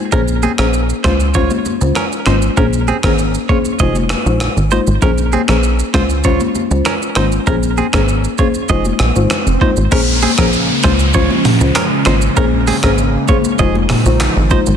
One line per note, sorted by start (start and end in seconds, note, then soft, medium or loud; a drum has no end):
0.12 0.47 A#1 loud
0.12 0.33 A#3 medium
0.12 0.33 C#4 medium
0.12 0.21 C#4 medium
0.12 0.33 G#4 medium
0.12 0.20 A#4 medium
0.12 0.33 C5 loud
0.12 kick loud
0.12 shaker medium
0.28 shaker medium
0.43 0.52 C4 medium
0.43 0.51 G#4 medium
0.43 high conga medium
0.43 shaker soft
0.58 0.93 A#1 medium
0.58 0.78 A#3 medium
0.58 0.79 C#4 medium
0.58 0.67 C#4 medium
0.58 0.79 G#4 medium
0.58 0.66 A#4 medium
0.58 0.79 C5 medium
0.58 finger snap medium
0.58 cross-stick loud
0.58 shaker soft
0.74 shaker medium
0.90 shaker medium
1.04 1.50 C#2 medium
1.04 1.25 G#3 medium
1.04 1.25 C#4 medium
1.04 1.25 F4 medium
1.04 1.13 F4 medium
1.04 1.12 C5 medium
1.04 1.25 C5 medium
1.04 finger snap medium
1.04 kick medium
1.04 cross-stick loud
1.04 high conga medium
1.20 shaker medium
1.34 1.55 G#3 medium
1.34 1.55 C#4 medium
1.34 1.55 F4 medium
1.34 1.51 F4 medium
1.34 1.56 C5 medium
1.34 1.50 C#5 medium
1.34 kick medium
1.34 low conga medium
1.34 shaker medium
1.51 high conga medium
1.51 shaker medium
1.66 high conga medium
1.66 shaker soft
1.81 1.92 C#2 loud
1.81 2.01 G#3 medium
1.81 2.01 C#4 medium
1.81 2.01 F4 medium
1.81 2.01 C5 medium
1.81 shaker medium
1.95 2.05 C#4 medium
1.95 2.04 A#4 medium
1.95 finger snap medium
1.95 cross-stick medium
1.95 low conga medium
1.95 shaker medium
2.13 shaker medium
2.26 2.50 G#1 medium
2.26 2.47 G#3 medium
2.26 2.47 C#4 medium
2.26 2.35 D#4 medium
2.26 2.47 F4 medium
2.26 2.35 C5 medium
2.26 2.47 C5 medium
2.26 finger snap medium
2.26 cross-stick medium
2.26 high conga medium
2.26 shaker medium
2.42 shaker medium
2.57 2.92 A#1 loud
2.57 2.78 A#3 medium
2.57 2.78 C#4 medium
2.57 2.66 C#4 medium
2.57 2.78 G#4 medium
2.57 2.65 A#4 medium
2.57 2.78 C5 loud
2.57 kick loud
2.57 shaker medium
2.73 shaker medium
2.88 2.97 C4 medium
2.88 2.96 G#4 medium
2.88 high conga medium
2.88 shaker soft
3.03 3.38 G#1 medium
3.03 3.23 A#3 medium
3.03 3.23 C#4 medium
3.03 3.12 C#4 soft
3.03 3.24 G#4 medium
3.03 3.11 A#4 medium
3.03 3.24 C5 medium
3.03 finger snap medium
3.03 kick medium
3.03 cross-stick loud
3.03 shaker soft
3.19 shaker medium
3.35 shaker medium
3.49 3.69 A#3 medium
3.49 3.70 C#4 medium
3.49 3.58 F4 medium
3.49 3.70 G#4 medium
3.49 3.70 C5 medium
3.49 3.57 C#5 medium
3.49 kick medium
3.49 high conga medium
3.65 shaker medium
3.79 4.15 F1 loud
3.79 4.00 G#3 medium
3.79 4.00 D#4 medium
3.79 4.00 F4 medium
3.79 3.96 G#4 medium
3.79 4.00 C5 loud
3.79 3.95 D#5 medium
3.79 kick medium
3.79 low conga medium
3.79 shaker medium
3.95 high conga medium
3.95 shaker medium
4.09 finger snap medium
4.09 cross-stick loud
4.09 high conga medium
4.09 shaker medium
4.26 4.49 A#1 medium
4.26 4.46 G#3 medium
4.26 4.46 D#4 medium
4.26 4.46 F4 medium
4.26 4.46 C5 medium
4.26 shaker medium
4.40 finger snap medium
4.40 cross-stick medium
4.40 low conga medium
4.40 shaker medium
4.57 4.80 G#1 medium
4.57 shaker medium
4.71 4.92 G#3 medium
4.71 4.92 D#4 medium
4.71 4.80 D#4 medium
4.71 4.92 F4 medium
4.71 4.80 C5 medium
4.71 4.92 C5 medium
4.71 high conga medium
4.71 shaker medium
4.87 4.99 G#1 medium
4.87 shaker medium
5.02 5.37 A#1 loud
5.02 5.22 A#3 medium
5.02 5.23 C#4 medium
5.02 5.11 C#4 medium
5.02 5.23 G#4 medium
5.02 5.10 A#4 medium
5.02 5.23 C5 loud
5.02 kick loud
5.02 shaker medium
5.18 shaker medium
5.33 5.42 C4 medium
5.33 5.41 G#4 medium
5.33 high conga medium
5.33 shaker soft
5.48 5.83 A#1 medium
5.48 5.68 A#3 medium
5.48 5.68 C#4 medium
5.48 5.57 C#4 medium
5.48 5.68 G#4 medium
5.48 5.56 A#4 medium
5.48 5.69 C5 medium
5.48 finger snap medium
5.48 cross-stick loud
5.48 shaker soft
5.64 shaker medium
5.79 shaker medium
5.94 6.40 C#2 loud
5.94 6.14 G#3 medium
5.94 6.14 C#4 medium
5.94 6.15 F4 medium
5.94 6.03 F4 medium
5.94 6.02 C5 medium
5.94 6.15 C5 medium
5.94 finger snap medium
5.94 kick medium
5.94 cross-stick loud
5.94 high conga soft
6.10 shaker medium
6.24 6.45 G#3 medium
6.24 6.45 C#4 medium
6.24 6.45 F4 medium
6.24 6.41 F4 medium
6.24 6.45 C5 loud
6.24 6.40 C#5 medium
6.24 kick medium
6.24 low conga medium
6.24 shaker medium
6.40 high conga medium
6.40 shaker medium
6.55 high conga medium
6.55 shaker medium
6.71 6.82 C#2 medium
6.71 6.91 G#3 medium
6.71 6.91 C#4 medium
6.71 6.91 F4 medium
6.71 6.91 C5 medium
6.71 shaker medium
6.85 6.94 C#4 medium
6.85 6.94 A#4 medium
6.85 finger snap medium
6.85 cross-stick medium
6.85 low conga medium
6.85 shaker medium
7.03 shaker medium
7.15 7.39 G#1 loud
7.15 7.37 G#3 medium
7.15 7.37 C#4 medium
7.15 7.25 D#4 medium
7.15 7.37 F4 medium
7.15 7.25 C5 medium
7.15 7.37 C5 medium
7.15 finger snap medium
7.15 cross-stick medium
7.15 high conga medium
7.15 shaker medium
7.32 shaker medium
7.47 7.82 A#1 loud
7.47 7.67 A#3 medium
7.47 7.68 C#4 medium
7.47 7.56 C#4 medium
7.47 7.68 G#4 medium
7.47 7.55 A#4 medium
7.47 7.68 C5 loud
7.47 kick loud
7.47 swell medium
7.47 shaker medium
7.63 shaker medium
7.78 7.86 C4 medium
7.78 7.86 G#4 medium
7.78 high conga medium
7.78 shaker soft
7.93 8.28 G#1 medium
7.93 8.13 A#3 medium
7.93 8.13 C#4 medium
7.93 8.02 C#4 soft
7.93 8.13 G#4 medium
7.93 8.01 A#4 medium
7.93 8.13 C5 medium
7.93 finger snap medium
7.93 kick loud
7.93 cross-stick loud
7.93 shaker soft
8.09 shaker medium
8.24 shaker medium
8.38 8.59 A#3 medium
8.38 8.59 C#4 medium
8.38 8.47 F4 medium
8.38 8.59 G#4 medium
8.38 8.59 C5 medium
8.38 8.47 C#5 medium
8.38 kick medium
8.38 high conga medium
8.38 shaker medium
8.55 shaker medium
8.69 8.93 F1 loud
8.69 8.90 G#3 medium
8.69 8.90 D#4 medium
8.69 8.90 F4 medium
8.69 8.85 G#4 medium
8.69 8.90 C5 loud
8.69 8.85 D#5 medium
8.69 kick medium
8.69 low conga medium
8.69 shaker medium
8.85 high conga medium
8.85 shaker medium
8.99 9.12 A#1 loud
8.99 finger snap medium
8.99 cross-stick loud
8.99 high conga medium
8.99 shaker medium
9.16 9.27 G#1 loud
9.16 9.35 G#3 medium
9.16 9.36 D#4 medium
9.16 9.36 F4 medium
9.16 9.36 C5 medium
9.16 shaker medium
9.30 finger snap medium
9.30 cross-stick medium
9.30 low conga medium
9.30 shaker medium
9.47 9.58 F1 medium
9.47 shaker medium
9.61 9.82 G#3 medium
9.61 9.82 D#4 medium
9.61 9.70 D#4 medium
9.61 9.82 F4 medium
9.61 9.69 C5 medium
9.61 9.82 C5 medium
9.61 kick medium
9.61 high conga medium
9.77 9.88 G#1 medium
9.77 shaker medium
9.92 10.27 A#1 loud
9.92 14.77 C#3 medium
9.92 14.77 G#3 medium
9.92 10.12 A#3 loud
9.92 10.83 A#3 medium
9.92 10.12 C#4 medium
9.92 13.56 C#4 medium
9.92 10.01 C#4 medium
9.92 10.12 G#4 medium
9.92 10.00 A#4 medium
9.92 10.12 C5 loud
9.92 kick loud
9.92 crash loud
9.92 downlifter medium
9.92 shaker medium
10.22 10.31 C4 medium
10.22 10.31 G#4 medium
10.22 open hi-hat medium
10.22 high conga medium
10.22 shaker medium
10.38 10.72 A#1 medium
10.38 10.58 A#3 medium
10.38 10.58 C#4 medium
10.38 10.47 C#4 medium
10.38 10.58 G#4 medium
10.38 10.46 A#4 medium
10.38 10.58 C5 medium
10.38 finger snap medium
10.38 kick medium
10.38 cross-stick loud
10.38 shaker medium
10.53 shaker medium
10.83 11.30 C#2 loud
10.83 12.35 F3 medium
10.83 11.04 G#3 medium
10.83 11.04 C#4 medium
10.83 11.04 F4 medium
10.83 10.93 F4 medium
10.83 10.92 C5 medium
10.83 11.04 C5 medium
10.83 finger snap medium
10.83 kick medium
10.83 cross-stick loud
10.83 high conga medium
10.83 shaker medium
11.00 shaker medium
11.14 11.35 G#3 loud
11.14 11.35 C#4 medium
11.14 11.35 F4 medium
11.14 11.30 F4 medium
11.14 11.35 C5 loud
11.14 11.30 C#5 medium
11.14 kick medium
11.14 low conga medium
11.14 shaker medium
11.31 high conga medium
11.45 mid tom loud
11.45 open hi-hat medium
11.45 high conga medium
11.45 shaker medium
11.61 11.72 C#2 loud
11.61 11.80 G#3 medium
11.61 11.80 C#4 medium
11.61 11.81 F4 medium
11.61 11.81 C5 medium
11.61 shaker medium
11.75 11.84 C#4 medium
11.75 11.84 A#4 medium
11.75 finger snap medium
11.75 cross-stick medium
11.75 clap loud
11.75 low conga medium
11.75 shaker medium
12.05 12.29 G#1 loud
12.05 12.27 G#3 medium
12.05 12.27 C#4 medium
12.05 12.15 D#4 medium
12.05 12.27 F4 medium
12.05 12.14 C5 medium
12.05 12.27 C5 medium
12.05 finger snap medium
12.05 cross-stick loud
12.05 high conga medium
12.05 shaker medium
12.22 shaker medium
12.37 12.72 A#1 loud
12.37 12.57 A#3 loud
12.37 13.58 A#3 medium
12.37 12.57 C#4 medium
12.37 12.45 C#4 medium
12.37 12.57 G#4 medium
12.37 12.45 A#4 medium
12.37 12.57 C5 loud
12.37 kick loud
12.37 shaker medium
12.67 12.76 C4 medium
12.67 12.76 G#4 medium
12.67 open hi-hat medium
12.67 high conga medium
12.67 shaker medium
12.83 13.17 G#1 medium
12.83 13.03 A#3 medium
12.83 13.03 C#4 medium
12.83 12.91 C#4 medium
12.83 13.03 G#4 medium
12.83 12.91 A#4 medium
12.83 13.03 C5 medium
12.83 finger snap medium
12.83 kick loud
12.83 cross-stick loud
12.83 shaker medium
12.98 shaker medium
13.28 13.49 A#3 medium
13.28 13.49 C#4 medium
13.28 13.37 F4 medium
13.28 13.49 G#4 medium
13.28 13.49 C5 medium
13.28 13.37 C#5 medium
13.28 kick loud
13.28 high conga medium
13.28 shaker medium
13.45 shaker medium
13.59 13.94 F1 loud
13.59 14.77 F3 medium
13.59 13.80 G#3 medium
13.59 14.77 D#4 medium
13.59 13.80 D#4 medium
13.59 13.80 F4 medium
13.59 13.75 G#4 medium
13.59 13.80 C5 loud
13.59 13.75 D#5 medium
13.59 kick medium
13.59 low conga medium
13.59 shaker medium
13.75 high conga medium
13.89 finger snap medium
13.89 cross-stick loud
13.89 mid tom loud
13.89 open hi-hat medium
13.89 high conga medium
13.89 shaker medium
14.05 14.29 A#1 loud
14.05 14.25 G#3 medium
14.05 14.25 D#4 medium
14.05 14.25 F4 medium
14.05 14.26 C5 medium
14.05 shaker medium
14.20 finger snap medium
14.20 cross-stick loud
14.20 clap loud
14.20 low conga medium
14.20 shaker medium
14.36 14.59 G#1 loud
14.51 14.71 G#3 medium
14.51 14.72 D#4 medium
14.51 14.60 D#4 medium
14.51 14.72 F4 medium
14.51 14.59 C5 medium
14.51 14.72 C5 medium
14.51 kick medium
14.51 high conga medium
14.51 shaker medium
14.67 14.77 G#1 medium
14.67 shaker medium